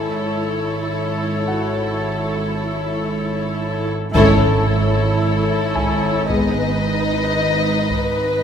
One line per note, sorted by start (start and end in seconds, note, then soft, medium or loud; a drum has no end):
0.00 3.91 G#1 soft
0.00 3.91 G#2 soft
0.00 3.91 E4 soft
0.00 3.91 A4 soft
0.00 3.91 C#5 soft
1.48 4.12 F#4 soft
1.48 4.11 F#5 soft
4.14 8.39 G#1 medium
4.14 8.39 G#2 medium
4.14 4.65 C#4 medium
4.14 6.25 E4 medium
4.14 6.25 A4 medium
4.14 4.65 A4 medium
4.14 6.25 C#5 medium
4.14 taiko medium
4.14 impact medium
5.75 8.43 G#5 soft
5.75 taiko medium
6.29 6.71 G#3 soft
6.29 6.72 B3 soft
6.29 8.40 D#4 soft
6.29 8.43 B4 soft
6.29 8.39 D#5 soft
6.29 taiko medium
7.90 taiko medium